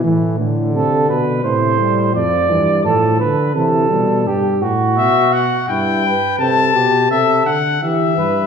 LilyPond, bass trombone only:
\new Staff \with { instrumentName = "Bass trombone" } { \clef bass \time 3/4 \key a \minor \tempo 4 = 85 a,8 a,8 c8 b,8 a,4 | f,8 g,8 a,8 d8 c8 b,8 | g,8 a,8 b,4 g,8 r8 | c8 b,8 c8 d8 e8 g,8 | }